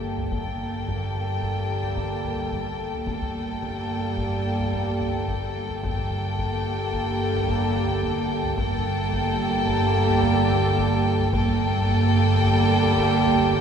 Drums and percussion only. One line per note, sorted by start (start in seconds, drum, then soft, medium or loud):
0.18 taiko low medium
0.32 taiko medium
0.46 taiko low soft
0.87 taiko medium
1.42 taiko medium
1.83 taiko low soft
1.97 taiko medium
2.24 taiko low medium
2.53 taiko medium
2.94 taiko low soft
3.07 taiko medium
3.21 taiko low medium
3.62 taiko medium
4.17 taiko medium
4.59 taiko low medium
4.73 taiko medium
5.00 taiko low medium
5.28 taiko medium
5.70 taiko low medium
5.84 taiko loud
5.98 taiko low medium
6.39 taiko medium
6.94 taiko medium
7.35 taiko low medium
7.49 taiko medium
7.76 taiko low medium
8.03 taiko medium
8.44 taiko low medium
8.57 taiko loud
8.72 taiko low medium
9.13 taiko medium
9.68 taiko medium
10.09 taiko low medium
10.23 taiko medium
10.50 taiko low medium
10.78 taiko medium
11.19 taiko low medium
11.33 taiko loud
11.47 taiko low medium
11.88 taiko medium
12.43 taiko medium
12.84 taiko low medium
12.98 taiko medium
13.25 taiko low medium
13.53 taiko medium